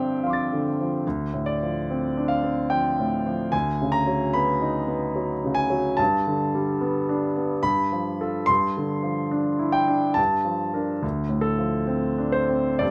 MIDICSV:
0, 0, Header, 1, 2, 480
1, 0, Start_track
1, 0, Tempo, 840336
1, 599, Time_signature, 3, 2, 24, 8
1, 1552, Tempo, 819672
1, 4432, Tempo, 852273
1, 6832, Tempo, 923077
1, 7357, End_track
2, 0, Start_track
2, 0, Title_t, "Grand piano"
2, 0, Program_c, 0, 0
2, 0, Control_c, 0, 64, 127
2, 0, Note_on_c, 0, 43, 39
2, 0, Note_on_c, 0, 50, 28
2, 0, Note_on_c, 0, 53, 31
2, 0, Note_on_c, 0, 60, 32
2, 0, Note_on_c, 0, 62, 31
2, 0, Note_on_c, 0, 76, 62
2, 0, Note_on_c, 0, 77, 56
2, 0, Note_on_c, 0, 79, 59
2, 61, Note_off_c, 0, 62, 0
2, 133, Note_off_c, 0, 77, 0
2, 133, Note_on_c, 0, 77, 28
2, 135, Note_off_c, 0, 53, 0
2, 135, Note_on_c, 0, 53, 32
2, 152, Note_on_c, 0, 84, 28
2, 172, Note_on_c, 0, 86, 27
2, 189, Note_on_c, 0, 93, 28
2, 221, Note_off_c, 0, 60, 0
2, 303, Note_off_c, 0, 50, 0
2, 303, Note_on_c, 0, 50, 28
2, 369, Note_off_c, 0, 79, 0
2, 385, Note_off_c, 0, 53, 0
2, 461, Note_on_c, 0, 53, 34
2, 548, Note_off_c, 0, 50, 0
2, 582, Note_off_c, 0, 43, 0
2, 585, Note_off_c, 0, 77, 0
2, 594, Note_off_c, 0, 84, 0
2, 604, Note_off_c, 0, 86, 0
2, 607, Control_c, 0, 64, 0
2, 609, Note_off_c, 0, 53, 0
2, 609, Note_off_c, 0, 76, 0
2, 612, Note_on_c, 0, 38, 41
2, 613, Note_off_c, 0, 93, 0
2, 708, Control_c, 0, 64, 127
2, 762, Note_on_c, 0, 45, 31
2, 834, Note_on_c, 0, 74, 51
2, 930, Note_on_c, 0, 53, 30
2, 1012, Note_off_c, 0, 45, 0
2, 1087, Note_on_c, 0, 60, 34
2, 1177, Note_off_c, 0, 53, 0
2, 1242, Note_on_c, 0, 62, 34
2, 1303, Note_on_c, 0, 77, 58
2, 1313, Note_off_c, 0, 74, 0
2, 1336, Note_off_c, 0, 60, 0
2, 1391, Note_on_c, 0, 60, 34
2, 1493, Note_off_c, 0, 62, 0
2, 1542, Note_on_c, 0, 79, 63
2, 1547, Note_off_c, 0, 77, 0
2, 1553, Note_on_c, 0, 53, 35
2, 1647, Note_off_c, 0, 60, 0
2, 1712, Note_on_c, 0, 45, 31
2, 1808, Note_off_c, 0, 53, 0
2, 1873, Note_on_c, 0, 53, 35
2, 1966, Note_off_c, 0, 45, 0
2, 2013, Note_off_c, 0, 38, 0
2, 2021, Note_on_c, 0, 80, 62
2, 2025, Note_off_c, 0, 79, 0
2, 2026, Note_on_c, 0, 38, 44
2, 2031, Note_off_c, 0, 53, 0
2, 2040, Control_c, 0, 64, 0
2, 2114, Control_c, 0, 64, 127
2, 2195, Note_on_c, 0, 49, 34
2, 2255, Note_on_c, 0, 82, 67
2, 2264, Note_off_c, 0, 80, 0
2, 2346, Note_on_c, 0, 54, 33
2, 2447, Note_off_c, 0, 49, 0
2, 2499, Note_on_c, 0, 83, 64
2, 2502, Note_off_c, 0, 82, 0
2, 2508, Note_on_c, 0, 59, 35
2, 2604, Note_off_c, 0, 54, 0
2, 2662, Note_on_c, 0, 63, 35
2, 2766, Note_off_c, 0, 59, 0
2, 2816, Note_on_c, 0, 59, 34
2, 2922, Note_off_c, 0, 63, 0
2, 2980, Note_on_c, 0, 54, 37
2, 3077, Note_off_c, 0, 59, 0
2, 3149, Note_on_c, 0, 49, 31
2, 3208, Note_on_c, 0, 80, 72
2, 3222, Note_off_c, 0, 83, 0
2, 3238, Note_off_c, 0, 54, 0
2, 3300, Note_on_c, 0, 54, 37
2, 3405, Note_off_c, 0, 49, 0
2, 3443, Note_off_c, 0, 38, 0
2, 3455, Note_on_c, 0, 81, 61
2, 3460, Note_off_c, 0, 80, 0
2, 3466, Note_off_c, 0, 54, 0
2, 3468, Note_on_c, 0, 43, 46
2, 3480, Control_c, 0, 64, 0
2, 3560, Control_c, 0, 64, 127
2, 3632, Note_on_c, 0, 50, 35
2, 3795, Note_on_c, 0, 55, 34
2, 3891, Note_off_c, 0, 50, 0
2, 3948, Note_on_c, 0, 59, 38
2, 4048, Note_off_c, 0, 55, 0
2, 4113, Note_on_c, 0, 62, 39
2, 4202, Note_off_c, 0, 59, 0
2, 4274, Note_on_c, 0, 59, 37
2, 4367, Note_off_c, 0, 62, 0
2, 4408, Note_off_c, 0, 43, 0
2, 4425, Note_off_c, 0, 81, 0
2, 4427, Note_on_c, 0, 83, 78
2, 4429, Note_on_c, 0, 43, 46
2, 4435, Note_off_c, 0, 59, 0
2, 4442, Control_c, 0, 64, 0
2, 4531, Control_c, 0, 64, 127
2, 4593, Note_on_c, 0, 53, 32
2, 4755, Note_on_c, 0, 69, 38
2, 4757, Note_on_c, 0, 65, 37
2, 4850, Note_off_c, 0, 53, 0
2, 4897, Note_on_c, 0, 84, 73
2, 4898, Note_off_c, 0, 43, 0
2, 4899, Note_off_c, 0, 69, 0
2, 4900, Note_off_c, 0, 65, 0
2, 4910, Note_on_c, 0, 43, 42
2, 4912, Note_off_c, 0, 83, 0
2, 4922, Control_c, 0, 64, 0
2, 4999, Control_c, 0, 64, 127
2, 5072, Note_on_c, 0, 50, 36
2, 5218, Note_on_c, 0, 53, 36
2, 5325, Note_off_c, 0, 50, 0
2, 5377, Note_on_c, 0, 62, 38
2, 5478, Note_off_c, 0, 53, 0
2, 5534, Note_on_c, 0, 64, 36
2, 5609, Note_on_c, 0, 79, 65
2, 5618, Note_off_c, 0, 84, 0
2, 5637, Note_off_c, 0, 62, 0
2, 5696, Note_on_c, 0, 62, 36
2, 5794, Note_off_c, 0, 64, 0
2, 5840, Note_off_c, 0, 43, 0
2, 5843, Note_on_c, 0, 81, 64
2, 5856, Note_off_c, 0, 79, 0
2, 5857, Note_on_c, 0, 43, 46
2, 5860, Note_off_c, 0, 62, 0
2, 5876, Control_c, 0, 64, 0
2, 5957, Control_c, 0, 64, 127
2, 6015, Note_on_c, 0, 53, 32
2, 6095, Note_off_c, 0, 81, 0
2, 6179, Note_on_c, 0, 70, 36
2, 6183, Note_on_c, 0, 62, 33
2, 6277, Note_off_c, 0, 53, 0
2, 6326, Note_off_c, 0, 70, 0
2, 6328, Note_off_c, 0, 43, 0
2, 6329, Note_off_c, 0, 62, 0
2, 6341, Note_on_c, 0, 38, 44
2, 6356, Control_c, 0, 64, 0
2, 6450, Control_c, 0, 64, 127
2, 6491, Note_on_c, 0, 45, 32
2, 6560, Note_on_c, 0, 69, 54
2, 6655, Note_on_c, 0, 53, 34
2, 6759, Note_off_c, 0, 45, 0
2, 6817, Note_on_c, 0, 60, 34
2, 6921, Note_off_c, 0, 53, 0
2, 6981, Note_on_c, 0, 62, 34
2, 7054, Note_on_c, 0, 72, 59
2, 7057, Note_off_c, 0, 69, 0
2, 7077, Note_off_c, 0, 60, 0
2, 7141, Note_on_c, 0, 60, 33
2, 7242, Note_off_c, 0, 62, 0
2, 7289, Note_off_c, 0, 38, 0
2, 7296, Note_on_c, 0, 74, 64
2, 7305, Note_off_c, 0, 72, 0
2, 7307, Note_on_c, 0, 43, 42
2, 7308, Note_off_c, 0, 60, 0
2, 7321, Control_c, 0, 64, 0
2, 7357, Note_off_c, 0, 43, 0
2, 7357, Note_off_c, 0, 74, 0
2, 7357, End_track
0, 0, End_of_file